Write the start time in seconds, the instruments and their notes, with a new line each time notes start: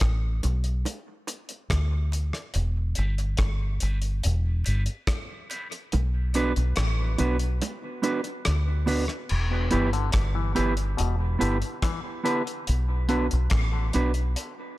0.00 fingered electric bass A1, kick, cross-stick, closed hi-hat
0.43 fingered electric bass B1, closed hi-hat, high bongo
0.64 closed hi-hat
0.85 closed hi-hat, high bongo
1.27 closed hi-hat, high bongo
1.49 closed hi-hat
1.70 fingered electric bass D2, kick, cross-stick, closed hi-hat
2.12 closed hi-hat, low bongo
2.33 cross-stick, closed hi-hat
2.54 fingered electric bass E1, closed hi-hat, high bongo
2.95 fingered electric bass G1, clean electric guitar B3 E4 G4 B4, closed hi-hat
3.18 closed hi-hat
3.37 fingered electric bass G1, kick, cross-stick, closed hi-hat
3.80 fingered electric bass G1, clean electric guitar B3 E4 G4 B4, closed hi-hat, high bongo
4.02 closed hi-hat
4.23 fingered electric bass E1, closed hi-hat, high bongo
4.64 fingered electric bass G1, clean electric guitar B3 E4 G4 B4, closed hi-hat, high bongo
4.86 closed hi-hat
5.07 kick, cross-stick, closed hi-hat
5.49 clean electric guitar B3 E4 G4 B4, closed hi-hat, low bongo
5.72 closed hi-hat
5.92 fingered electric bass B1, closed hi-hat, high bongo
6.34 clean electric guitar B3 D4 F#4 B4, closed hi-hat
6.56 fingered electric bass B1, closed hi-hat
6.76 fingered electric bass A1, cross-stick, closed hi-hat
7.18 fingered electric bass B1, clean electric guitar B3 D4 F#4 B4, closed hi-hat, high bongo, low bongo
7.39 closed hi-hat
7.62 closed hi-hat, high bongo
8.02 clean electric guitar B3 D4 F#4 B4, closed hi-hat, high bongo
8.24 muted clean electric guitar stroke, closed hi-hat
8.45 fingered electric bass D2, cross-stick, closed hi-hat
8.86 clean electric guitar B3 D4 F#4 B4, open hi-hat, low bongo
9.08 cross-stick, closed hi-hat
9.29 fingered electric bass E1, crash
9.71 fingered electric bass G1, clav E3, clean electric guitar B3 E4 G4 B4, closed hi-hat
9.93 clav D3, closed hi-hat
10.12 fingered electric bass G1, kick, cross-stick, closed hi-hat
10.35 clav E3
10.55 fingered electric bass G1, clav E3, clean electric guitar B3 E4 G4 B4, closed hi-hat
10.77 closed hi-hat
10.97 fingered electric bass E1, clav B2, closed hi-hat
11.39 fingered electric bass G1, clav D3, clean electric guitar B3 E4 G4 B4, closed hi-hat
11.62 closed hi-hat
11.82 clav E3, kick, cross-stick, closed hi-hat
12.24 clav D3, clean electric guitar B3 E4 G4 B4, closed hi-hat
12.47 closed hi-hat
12.67 fingered electric bass B1, closed hi-hat
13.09 clav D3, clean electric guitar B3 D4 F#4 B4, closed hi-hat
13.31 fingered electric bass B1, closed hi-hat
13.50 fingered electric bass A1, kick, cross-stick, closed hi-hat
13.93 fingered electric bass B1, clean electric guitar B3 D4 F#4 B4, closed hi-hat
14.14 closed hi-hat
14.36 closed hi-hat